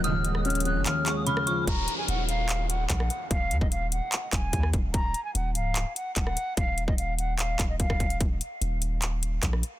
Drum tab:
HH |x---x---xxxxx---x---x---x---x---|x---x---x---x---x---x---x---x---|x---x---x---x---x---x---x---x---|x---x---x---x---x---x---x---x---|
CP |----------------x---x-----------|----------------x-------x-------|----------------x---x-----------|----------------x-------x-------|
SD |------r-------------------r-----|--------------------------r-----|--------------------------r-----|--------------------------r-----|
BD |--------------------------------|o-----------------------o-------|o-----o-------------o---o---o---|o-----------------------o-------|

HH |x---x---x---x---x---x---x---x-x-|x---x---x---x---x---x---x---x---|
CP |----------------x---x-----------|----------------x-------x-------|
SD |--------------------------r-----|--------------------------r-----|
BD |o-----o-------------o---o-o-o---|o-----------------------o-------|